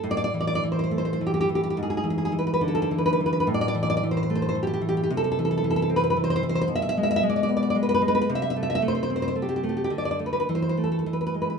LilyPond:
\new Staff \with { instrumentName = "Nylon-string guitar" } { \time 3/4 \key a \minor \tempo 4 = 109 << { r32 d''32 d''32 d''32 r32 d''32 d''32 d''32 r32 c''32 c''32 c''32 r32 c''32 c''32 c''32 r32 g'32 g'32 g'32 r32 g'32 g'32 g'32 | r32 gis'32 gis'32 gis'32 r32 gis'32 gis'32 gis'32 r32 b'32 b'32 b'32 r32 a'32 a'32 a'32 r32 b'32 b'32 b'32 r32 b'32 b'32 b'32 | r32 d''32 d''32 d''32 r32 d''32 d''32 d''32 r32 c''32 c''32 c''32 r32 c''32 c''32 c''32 r32 g'32 g'32 g'32 r32 g'32 g'32 g'32 | r32 a'32 a'32 a'32 r32 a'32 a'32 a'32 r32 a'32 a'32 a'32 r32 b'32 b'32 b'32 r32 c''32 c''32 c''32 r32 c''32 c''32 c''32 |
r32 e''32 e''32 e''32 r32 e''32 e''32 e''32 r32 d''32 d''32 d''32 r32 d''32 d''32 d''32 r32 b'32 b'32 b'32 r32 b'32 b'32 b'32 | r32 e''32 e''32 e''32 r32 e''32 e''32 e''32 r32 c''32 c''32 c''32 r32 c''32 c''32 c''32 r32 g'32 g'32 g'32 r32 g'32 g'32 g'32 | r32 d''32 d''32 d''32 r32 b'32 b'32 b'32 r32 c''32 c''32 c''32 r32 a'32 a'32 a'32 r32 b'32 b'32 b'32 r32 b'32 b'32 r32 | } \\ { a,8 e8 e8 a8 e8 e8 | gis,8 e8 e8 d8 e8 e8 | a,8 e8 e8 a8 e8 e8 | c8 e8 e8 c'8 e8 e8 |
b,8 gis8 gis8 b8 gis8 gis8 | c8 a8 a8 c'8 a8 a8 | d8 a8 e8 a8 e8 gis8 | } >> }